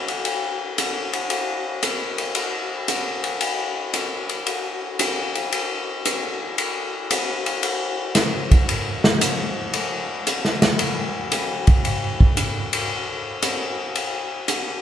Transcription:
0.08 ride soft
0.25 ride medium
0.78 hi-hat pedal soft
0.78 ride medium
1.13 ride soft
1.30 ride medium
1.83 hi-hat pedal medium
1.83 ride medium
2.18 ride soft
2.35 ride medium
2.88 hi-hat pedal medium
2.88 ride medium
3.24 ride soft
3.41 ride medium
3.94 hi-hat pedal medium
3.94 ride medium
4.29 ride soft
4.47 ride medium
4.99 hi-hat pedal medium
4.99 ride medium
5.35 ride soft
5.52 ride medium
6.05 hi-hat pedal medium
6.05 ride medium
6.58 ride medium
7.11 hi-hat pedal soft
7.11 ride medium
7.46 ride soft
7.63 ride medium
8.15 snare soft
8.15 hi-hat pedal medium
8.15 ride medium
8.51 kick medium
8.51 ride soft
8.69 ride medium
9.04 snare medium
9.21 hi-hat pedal medium
9.21 ride medium
9.73 ride medium
10.27 hi-hat pedal medium
10.27 ride medium
10.45 snare soft
10.62 snare soft
10.62 ride soft
10.79 ride medium
11.32 hi-hat pedal medium
11.32 ride medium
11.67 kick medium
11.67 ride soft
11.85 ride medium
12.21 kick medium
12.37 hi-hat pedal medium
12.37 ride medium
12.73 ride medium
13.42 hi-hat pedal medium
13.42 ride medium
13.95 ride medium
14.48 hi-hat pedal medium
14.48 ride medium

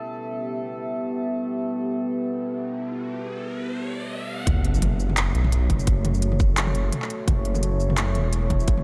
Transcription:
0.00 4.47 A3 medium
0.00 4.43 B3 medium
0.00 4.43 G4 medium
0.00 4.47 A4 medium
0.00 4.43 E5 medium
1.66 riser medium
4.47 5.34 F#1 loud
4.47 8.84 A3 medium
4.47 7.25 F#4 medium
4.47 8.84 C#5 medium
4.47 kick loud
4.47 closed hi-hat medium
4.47 mid tom medium
4.47 sub drop medium
4.65 closed hi-hat soft
4.75 shaker soft
4.82 closed hi-hat medium
4.82 mid tom medium
5.00 shaker soft
5.10 mid tom medium
5.17 clap loud
5.17 closed hi-hat medium
5.35 5.69 B1 medium
5.35 closed hi-hat soft
5.44 mid tom medium
5.52 closed hi-hat medium
5.70 5.86 F#1 medium
5.70 kick medium
5.70 closed hi-hat soft
5.70 mid tom medium
5.80 shaker soft
5.87 6.74 F#1 loud
5.87 kick loud
5.87 closed hi-hat medium
6.05 closed hi-hat soft
6.05 mid tom medium
6.14 shaker soft
6.22 closed hi-hat medium
6.32 mid tom medium
6.40 kick loud
6.40 shaker soft
6.57 clap loud
6.57 closed hi-hat medium
6.67 mid tom medium
6.75 6.91 F#1 medium
6.75 closed hi-hat soft
6.92 closed hi-hat medium
6.92 mid tom medium
7.02 clap soft
7.10 closed hi-hat soft
7.28 8.17 F#1 loud
7.28 8.84 E4 medium
7.28 kick loud
7.28 closed hi-hat medium
7.28 mid tom medium
7.45 closed hi-hat soft
7.55 mid tom medium
7.55 shaker soft
7.63 closed hi-hat medium
7.80 shaker soft
7.90 mid tom medium
7.97 clap loud
7.97 closed hi-hat medium
8.15 8.67 E1 medium
8.15 closed hi-hat soft
8.15 mid tom medium
8.33 closed hi-hat medium
8.50 kick medium
8.50 closed hi-hat soft
8.50 mid tom medium
8.60 shaker soft
8.68 8.84 F#1 loud
8.68 kick loud
8.68 closed hi-hat medium
8.78 mid tom soft

